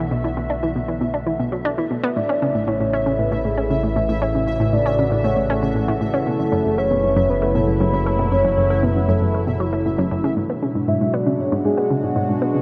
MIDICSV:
0, 0, Header, 1, 6, 480
1, 0, Start_track
1, 0, Key_signature, 3, "minor"
1, 0, Tempo, 512821
1, 106, Time_signature, 4, 2, 24, 8
1, 11810, End_track
2, 0, Start_track
2, 0, Title_t, "Synth texture"
2, 0, Program_c, 0, 99
2, 0, Note_on_c, 0, 76, 76
2, 9705, Note_on_c, 0, 78, 80
2, 9715, Note_off_c, 0, 76, 0
2, 11810, Note_off_c, 0, 78, 0
2, 11810, End_track
3, 0, Start_track
3, 0, Title_t, "Soft synth lead"
3, 0, Program_c, 1, 80
3, 2025, Note_on_c, 1, 74, 115
3, 2506, Note_on_c, 1, 73, 107
3, 2520, Note_off_c, 1, 74, 0
3, 2986, Note_on_c, 1, 71, 97
3, 3000, Note_off_c, 1, 73, 0
3, 3228, Note_on_c, 1, 68, 82
3, 3242, Note_off_c, 1, 71, 0
3, 3707, Note_off_c, 1, 68, 0
3, 3945, Note_on_c, 1, 76, 116
3, 4426, Note_on_c, 1, 74, 104
3, 4440, Note_off_c, 1, 76, 0
3, 4906, Note_on_c, 1, 73, 96
3, 4920, Note_off_c, 1, 74, 0
3, 5149, Note_on_c, 1, 69, 82
3, 5163, Note_off_c, 1, 73, 0
3, 5627, Note_off_c, 1, 69, 0
3, 5868, Note_on_c, 1, 69, 96
3, 6344, Note_on_c, 1, 73, 111
3, 6358, Note_off_c, 1, 69, 0
3, 6823, Note_off_c, 1, 73, 0
3, 6828, Note_on_c, 1, 71, 102
3, 7070, Note_on_c, 1, 69, 86
3, 7084, Note_off_c, 1, 71, 0
3, 7548, Note_off_c, 1, 69, 0
3, 7789, Note_on_c, 1, 73, 116
3, 8268, Note_on_c, 1, 71, 99
3, 8282, Note_off_c, 1, 73, 0
3, 8505, Note_on_c, 1, 69, 90
3, 8519, Note_off_c, 1, 71, 0
3, 9225, Note_off_c, 1, 69, 0
3, 10182, Note_on_c, 1, 76, 109
3, 10426, Note_on_c, 1, 74, 98
3, 10440, Note_off_c, 1, 76, 0
3, 10666, Note_on_c, 1, 73, 105
3, 10680, Note_off_c, 1, 74, 0
3, 10901, Note_off_c, 1, 73, 0
3, 10907, Note_on_c, 1, 68, 84
3, 11353, Note_off_c, 1, 68, 0
3, 11628, Note_on_c, 1, 71, 103
3, 11810, Note_off_c, 1, 71, 0
3, 11810, End_track
4, 0, Start_track
4, 0, Title_t, "Analog synth pad"
4, 0, Program_c, 2, 89
4, 0, Note_on_c, 2, 50, 74
4, 0, Note_on_c, 2, 54, 67
4, 0, Note_on_c, 2, 57, 73
4, 0, Note_on_c, 2, 59, 65
4, 0, Note_on_c, 2, 66, 80
4, 1987, Note_off_c, 2, 66, 0
4, 1988, Note_off_c, 2, 50, 0
4, 1988, Note_off_c, 2, 54, 0
4, 1988, Note_off_c, 2, 59, 0
4, 2021, Note_on_c, 2, 49, 75
4, 2022, Note_on_c, 2, 52, 68
4, 2023, Note_on_c, 2, 64, 85
4, 3925, Note_off_c, 2, 64, 0
4, 3944, Note_on_c, 2, 66, 84
4, 5846, Note_off_c, 2, 66, 0
4, 5864, Note_on_c, 2, 54, 73
4, 5864, Note_on_c, 2, 64, 84
4, 9666, Note_off_c, 2, 49, 0
4, 9666, Note_off_c, 2, 52, 0
4, 9666, Note_off_c, 2, 57, 0
4, 9668, Note_off_c, 2, 54, 0
4, 9668, Note_off_c, 2, 64, 0
4, 9701, Note_on_c, 2, 56, 73
4, 9701, Note_on_c, 2, 66, 88
4, 9702, Note_on_c, 2, 62, 69
4, 9703, Note_on_c, 2, 47, 77
4, 9703, Note_on_c, 2, 54, 70
4, 11810, Note_off_c, 2, 47, 0
4, 11810, Note_off_c, 2, 54, 0
4, 11810, Note_off_c, 2, 56, 0
4, 11810, Note_off_c, 2, 62, 0
4, 11810, Note_off_c, 2, 66, 0
4, 11810, End_track
5, 0, Start_track
5, 0, Title_t, "Synth arpeggio sound"
5, 0, Program_c, 3, 84
5, 105, Note_on_c, 3, 47, 80
5, 140, Note_off_c, 3, 47, 0
5, 226, Note_on_c, 3, 52, 72
5, 311, Note_off_c, 3, 52, 0
5, 347, Note_on_c, 3, 47, 71
5, 381, Note_off_c, 3, 47, 0
5, 467, Note_on_c, 3, 62, 69
5, 500, Note_off_c, 3, 62, 0
5, 589, Note_on_c, 3, 52, 73
5, 644, Note_off_c, 3, 52, 0
5, 707, Note_on_c, 3, 47, 67
5, 740, Note_off_c, 3, 47, 0
5, 826, Note_on_c, 3, 52, 73
5, 911, Note_off_c, 3, 52, 0
5, 945, Note_on_c, 3, 47, 71
5, 979, Note_off_c, 3, 47, 0
5, 1065, Note_on_c, 3, 62, 72
5, 1099, Note_off_c, 3, 62, 0
5, 1185, Note_on_c, 3, 52, 78
5, 1242, Note_off_c, 3, 52, 0
5, 1306, Note_on_c, 3, 47, 76
5, 1362, Note_off_c, 3, 47, 0
5, 1424, Note_on_c, 3, 54, 67
5, 1510, Note_off_c, 3, 54, 0
5, 1545, Note_on_c, 3, 62, 90
5, 1630, Note_off_c, 3, 62, 0
5, 1667, Note_on_c, 3, 52, 71
5, 1751, Note_off_c, 3, 52, 0
5, 1785, Note_on_c, 3, 47, 72
5, 1842, Note_off_c, 3, 47, 0
5, 1905, Note_on_c, 3, 59, 92
5, 1991, Note_off_c, 3, 59, 0
5, 2025, Note_on_c, 3, 45, 80
5, 2059, Note_off_c, 3, 45, 0
5, 2146, Note_on_c, 3, 61, 72
5, 2180, Note_off_c, 3, 61, 0
5, 2267, Note_on_c, 3, 49, 73
5, 2323, Note_off_c, 3, 49, 0
5, 2387, Note_on_c, 3, 45, 72
5, 2420, Note_off_c, 3, 45, 0
5, 2504, Note_on_c, 3, 45, 93
5, 2539, Note_off_c, 3, 45, 0
5, 2624, Note_on_c, 3, 45, 68
5, 2659, Note_off_c, 3, 45, 0
5, 2746, Note_on_c, 3, 61, 76
5, 2780, Note_off_c, 3, 61, 0
5, 2866, Note_on_c, 3, 49, 73
5, 2923, Note_off_c, 3, 49, 0
5, 2985, Note_on_c, 3, 45, 76
5, 3020, Note_off_c, 3, 45, 0
5, 3105, Note_on_c, 3, 45, 98
5, 3139, Note_off_c, 3, 45, 0
5, 3228, Note_on_c, 3, 45, 70
5, 3261, Note_off_c, 3, 45, 0
5, 3346, Note_on_c, 3, 61, 72
5, 3380, Note_off_c, 3, 61, 0
5, 3466, Note_on_c, 3, 49, 73
5, 3522, Note_off_c, 3, 49, 0
5, 3588, Note_on_c, 3, 45, 71
5, 3621, Note_off_c, 3, 45, 0
5, 3707, Note_on_c, 3, 45, 96
5, 3741, Note_off_c, 3, 45, 0
5, 3828, Note_on_c, 3, 45, 75
5, 3861, Note_off_c, 3, 45, 0
5, 3947, Note_on_c, 3, 61, 83
5, 3981, Note_off_c, 3, 61, 0
5, 4070, Note_on_c, 3, 49, 72
5, 4125, Note_off_c, 3, 49, 0
5, 4187, Note_on_c, 3, 45, 76
5, 4221, Note_off_c, 3, 45, 0
5, 4306, Note_on_c, 3, 45, 97
5, 4340, Note_off_c, 3, 45, 0
5, 4427, Note_on_c, 3, 45, 74
5, 4460, Note_off_c, 3, 45, 0
5, 4546, Note_on_c, 3, 61, 66
5, 4580, Note_off_c, 3, 61, 0
5, 4667, Note_on_c, 3, 49, 78
5, 4723, Note_off_c, 3, 49, 0
5, 4787, Note_on_c, 3, 45, 77
5, 4820, Note_off_c, 3, 45, 0
5, 4906, Note_on_c, 3, 45, 95
5, 4940, Note_off_c, 3, 45, 0
5, 5023, Note_on_c, 3, 45, 77
5, 5058, Note_off_c, 3, 45, 0
5, 5147, Note_on_c, 3, 61, 72
5, 5180, Note_off_c, 3, 61, 0
5, 5266, Note_on_c, 3, 49, 74
5, 5323, Note_off_c, 3, 49, 0
5, 5384, Note_on_c, 3, 45, 78
5, 5419, Note_off_c, 3, 45, 0
5, 5506, Note_on_c, 3, 45, 98
5, 5540, Note_off_c, 3, 45, 0
5, 5625, Note_on_c, 3, 45, 76
5, 5659, Note_off_c, 3, 45, 0
5, 5744, Note_on_c, 3, 61, 70
5, 5779, Note_off_c, 3, 61, 0
5, 5865, Note_on_c, 3, 47, 81
5, 5922, Note_off_c, 3, 47, 0
5, 5986, Note_on_c, 3, 42, 75
5, 6020, Note_off_c, 3, 42, 0
5, 6105, Note_on_c, 3, 42, 100
5, 6139, Note_off_c, 3, 42, 0
5, 6227, Note_on_c, 3, 42, 72
5, 6261, Note_off_c, 3, 42, 0
5, 6346, Note_on_c, 3, 57, 75
5, 6380, Note_off_c, 3, 57, 0
5, 6466, Note_on_c, 3, 47, 72
5, 6523, Note_off_c, 3, 47, 0
5, 6589, Note_on_c, 3, 42, 75
5, 6621, Note_off_c, 3, 42, 0
5, 6705, Note_on_c, 3, 42, 102
5, 6739, Note_off_c, 3, 42, 0
5, 6826, Note_on_c, 3, 42, 76
5, 6860, Note_off_c, 3, 42, 0
5, 6944, Note_on_c, 3, 57, 74
5, 6979, Note_off_c, 3, 57, 0
5, 7067, Note_on_c, 3, 47, 76
5, 7123, Note_off_c, 3, 47, 0
5, 7185, Note_on_c, 3, 42, 70
5, 7219, Note_off_c, 3, 42, 0
5, 7306, Note_on_c, 3, 42, 94
5, 7340, Note_off_c, 3, 42, 0
5, 7426, Note_on_c, 3, 42, 78
5, 7460, Note_off_c, 3, 42, 0
5, 7547, Note_on_c, 3, 57, 70
5, 7580, Note_off_c, 3, 57, 0
5, 7666, Note_on_c, 3, 47, 71
5, 7723, Note_off_c, 3, 47, 0
5, 7786, Note_on_c, 3, 42, 84
5, 7820, Note_off_c, 3, 42, 0
5, 7905, Note_on_c, 3, 42, 95
5, 7940, Note_off_c, 3, 42, 0
5, 8026, Note_on_c, 3, 42, 76
5, 8060, Note_off_c, 3, 42, 0
5, 8146, Note_on_c, 3, 57, 75
5, 8180, Note_off_c, 3, 57, 0
5, 8265, Note_on_c, 3, 47, 77
5, 8322, Note_off_c, 3, 47, 0
5, 8386, Note_on_c, 3, 42, 72
5, 8420, Note_off_c, 3, 42, 0
5, 8505, Note_on_c, 3, 42, 105
5, 8539, Note_off_c, 3, 42, 0
5, 8625, Note_on_c, 3, 42, 73
5, 8660, Note_off_c, 3, 42, 0
5, 8746, Note_on_c, 3, 57, 76
5, 8780, Note_off_c, 3, 57, 0
5, 8866, Note_on_c, 3, 47, 79
5, 8922, Note_off_c, 3, 47, 0
5, 8987, Note_on_c, 3, 54, 76
5, 9071, Note_off_c, 3, 54, 0
5, 9105, Note_on_c, 3, 57, 71
5, 9190, Note_off_c, 3, 57, 0
5, 9226, Note_on_c, 3, 45, 76
5, 9260, Note_off_c, 3, 45, 0
5, 9345, Note_on_c, 3, 42, 98
5, 9402, Note_off_c, 3, 42, 0
5, 9466, Note_on_c, 3, 42, 100
5, 9523, Note_off_c, 3, 42, 0
5, 9585, Note_on_c, 3, 49, 72
5, 9642, Note_off_c, 3, 49, 0
5, 9705, Note_on_c, 3, 44, 83
5, 9739, Note_off_c, 3, 44, 0
5, 9825, Note_on_c, 3, 59, 73
5, 9860, Note_off_c, 3, 59, 0
5, 9946, Note_on_c, 3, 49, 73
5, 10003, Note_off_c, 3, 49, 0
5, 10066, Note_on_c, 3, 44, 73
5, 10100, Note_off_c, 3, 44, 0
5, 10184, Note_on_c, 3, 44, 92
5, 10219, Note_off_c, 3, 44, 0
5, 10306, Note_on_c, 3, 44, 71
5, 10340, Note_off_c, 3, 44, 0
5, 10424, Note_on_c, 3, 59, 76
5, 10459, Note_off_c, 3, 59, 0
5, 10544, Note_on_c, 3, 49, 74
5, 10601, Note_off_c, 3, 49, 0
5, 10664, Note_on_c, 3, 44, 77
5, 10699, Note_off_c, 3, 44, 0
5, 10784, Note_on_c, 3, 44, 103
5, 10819, Note_off_c, 3, 44, 0
5, 10902, Note_on_c, 3, 44, 76
5, 10938, Note_off_c, 3, 44, 0
5, 11021, Note_on_c, 3, 59, 73
5, 11058, Note_off_c, 3, 59, 0
5, 11143, Note_on_c, 3, 49, 82
5, 11201, Note_off_c, 3, 49, 0
5, 11262, Note_on_c, 3, 44, 74
5, 11298, Note_off_c, 3, 44, 0
5, 11380, Note_on_c, 3, 44, 98
5, 11417, Note_off_c, 3, 44, 0
5, 11505, Note_on_c, 3, 44, 72
5, 11539, Note_off_c, 3, 44, 0
5, 11623, Note_on_c, 3, 59, 83
5, 11658, Note_off_c, 3, 59, 0
5, 11742, Note_on_c, 3, 49, 72
5, 11801, Note_off_c, 3, 49, 0
5, 11810, End_track
6, 0, Start_track
6, 0, Title_t, "Analog synth bass"
6, 0, Program_c, 4, 38
6, 0, Note_on_c, 4, 35, 85
6, 2001, Note_off_c, 4, 35, 0
6, 2025, Note_on_c, 4, 33, 85
6, 5841, Note_off_c, 4, 33, 0
6, 5867, Note_on_c, 4, 30, 90
6, 9682, Note_off_c, 4, 30, 0
6, 11810, End_track
0, 0, End_of_file